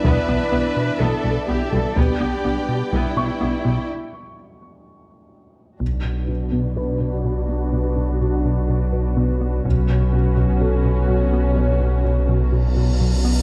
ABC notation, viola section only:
X:1
M:4/4
L:1/8
Q:1/4=125
K:Bm
V:1 name="Viola section"
B, B, G, z B, B, G, B, | B, B, G, z B, B, G, B, | z8 | [DF]8- |
[DF]8 | [CF]8- | [CF]6- [CF] z |]